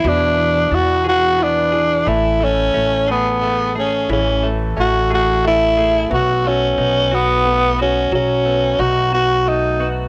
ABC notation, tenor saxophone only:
X:1
M:6/8
L:1/8
Q:3/8=60
K:A
V:1 name="Tenor saxophone"
D2 F F D2 | E C2 B,2 C | C z F F E2 | F C2 B,2 C |
C2 F F ^D z |]